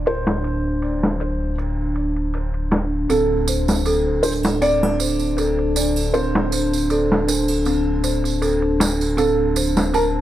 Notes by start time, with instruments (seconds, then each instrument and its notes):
Already playing: detuned saw bass D1, ambient pad D4, felt piano D5
0.06 felt piano C5, ride
0.27 snare
0.44 ride
0.82 ride
1.03 snare
1.20 ride
1.58 ride
1.96 ride
2.16 ride
2.34 ride
2.54 ride
2.71 snare, ride
3.09 detuned saw bass D1, celesta C4, ambient pad D4, felt piano A4, ride, tambourine
3.48 celesta C5, ride, tambourine
3.68 snare, tambourine
3.86 celesta A4, ride, tambourine
4.23 celesta D4, felt piano C5, ride, tambourine
4.43 snare, tambourine, triangle
4.62 celesta C4, felt piano D5, ride, tambourine
4.83 snare, triangle
5.00 celesta C5, ride, tambourine
5.19 tambourine
5.38 celesta A4, ride, tambourine
5.59 ride
5.76 celesta D4, ride, tambourine
5.96 tambourine, triangle
6.14 celesta C4, felt piano C5, ride, tambourine
6.35 snare
6.52 celesta C5, ride, tambourine
6.73 tambourine
6.90 celesta A4, ride, tambourine
7.12 snare
7.28 celesta D4, ride, tambourine
7.48 tambourine, triangle
7.65 celesta C4, ride, tambourine
8.04 celesta C5, ride, tambourine
8.24 ride, tambourine
8.42 celesta A4, ride, tambourine
8.62 ride
8.80 celesta D4, snare, ride, tambourine
9.01 tambourine
9.17 celesta C4, felt piano A4, ride, tambourine
9.56 celesta C5, ride, tambourine
9.77 snare, tambourine
9.94 felt piano A#4, celesta A5, ride, tambourine